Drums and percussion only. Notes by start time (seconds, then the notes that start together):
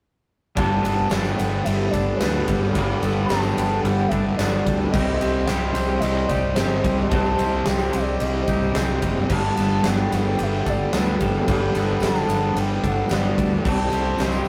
0.57 kick, ride
0.84 ride, tambourine
0.98 tambourine
1.10 snare, ride, tambourine
1.25 tambourine
1.39 snare, ride, tambourine
1.66 ride
1.80 tambourine
1.94 kick, ride, tambourine
2.21 snare, ride, tambourine
2.48 kick, ride
2.63 tambourine
2.75 kick, ride
3.02 ride, tambourine
3.17 tambourine
3.29 snare, ride, tambourine
3.43 tambourine
3.57 ride, tambourine
3.85 ride
3.98 tambourine
4.11 kick, ride
4.39 snare, ride, tambourine
4.67 kick, ride
4.81 tambourine
4.94 kick, crash
5.21 ride, tambourine
5.36 tambourine
5.48 snare, ride, tambourine
5.75 snare, ride, tambourine
6.02 ride
6.17 tambourine
6.29 kick, ride, tambourine
6.56 snare, ride, tambourine
6.84 kick, ride
6.98 tambourine
7.11 kick, ride, tambourine
7.24 tambourine
7.38 ride, tambourine
7.66 snare, ride, tambourine
7.79 tambourine
7.93 ride, tambourine
8.20 ride, tambourine
8.35 tambourine
8.48 kick, ride, tambourine
8.62 tambourine
8.75 snare, ride, tambourine
9.02 kick, ride
9.16 tambourine
9.30 kick, crash
9.57 ride, tambourine
9.71 tambourine
9.84 snare, ride, tambourine
10.12 snare, ride, tambourine
10.39 ride
10.54 tambourine
10.66 kick, ride, tambourine
10.93 snare, ride, tambourine
11.21 kick, ride
11.35 tambourine
11.48 kick, ride
11.75 ride, tambourine
11.87 tambourine
12.00 snare, ride, tambourine
12.15 tambourine
12.29 ride, tambourine
12.57 ride
12.69 tambourine
12.84 kick, ride
13.09 snare, ride, tambourine
13.38 kick, ride
13.50 tambourine
13.65 kick, crash
13.90 ride, tambourine
14.04 tambourine
14.18 snare, ride, tambourine
14.32 tambourine
14.45 tambourine